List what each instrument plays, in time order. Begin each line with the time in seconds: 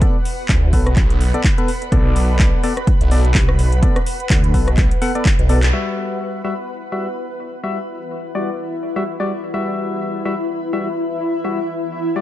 Already playing: ambient pad B4 F#5 B5
0.02 synth stab B3 A4 D5, kick, closed hi-hat
0.25 open hi-hat
0.49 detuned saw bass D2, kick, clap, closed hi-hat
0.73 detuned saw bass B1, synth stab B3 A4 B4, kick, open hi-hat
0.87 cross-stick, closed hi-hat
0.96 detuned saw bass B1, kick, clap, closed hi-hat
1.10 closed hi-hat
1.21 open hi-hat
1.34 synth stab B3 A4 D5, closed hi-hat
1.44 kick, clap, closed hi-hat
1.58 synth stab B3 A4 B4, closed hi-hat
1.68 open hi-hat
1.82 closed hi-hat
1.92 detuned saw bass B1, synth stab B3 A4 D5, kick, closed hi-hat
2.16 detuned saw bass B1, open hi-hat
2.39 kick, clap, closed hi-hat
2.63 synth stab B3 A4 D5, open hi-hat
2.77 cross-stick, closed hi-hat
2.87 kick, closed hi-hat
3.01 detuned saw bass B1, closed hi-hat
3.11 synth stab B3 A4 D5, open hi-hat
3.25 closed hi-hat
3.34 detuned saw bass C2, kick, clap, closed hi-hat
3.49 cross-stick
3.59 detuned saw bass B1, open hi-hat
3.72 closed hi-hat
3.83 synth stab B3 A4 D5, kick, closed hi-hat
3.96 cross-stick, closed hi-hat
4.06 open hi-hat
4.20 closed hi-hat
4.30 detuned saw bass D2, kick, clap, closed hi-hat
4.44 closed hi-hat
4.54 detuned saw bass B1, synth stab B3 A4 B4, kick, open hi-hat
4.68 cross-stick, closed hi-hat
4.77 detuned saw bass B1, kick, clap, closed hi-hat
4.91 closed hi-hat
5.02 synth stab B3 A4 F#5, open hi-hat
5.15 synth stab B3 A4 D5, closed hi-hat
5.25 kick, clap, closed hi-hat
5.39 detuned saw bass B1, closed hi-hat
5.49 synth stab B3 A4 D5, open hi-hat
5.63 clap, closed hi-hat
5.73 synth stab G3 F#4 E5, ambient pad E4
6.45 synth stab G3 F#4 E5
6.92 synth stab G3 F#4 E5
7.64 synth stab G3 F#4 E5
8.35 synth stab G3 F#4 D5
8.96 synth stab G3 F#4 E5
9.20 synth stab G3 F#4 D5
9.54 synth stab G3 F#4 E5
10.25 synth stab G3 F#4 E5
10.73 synth stab G3 F#4 E5
11.44 synth stab G3 F#4 E5
12.16 synth stab G3 F#4 D5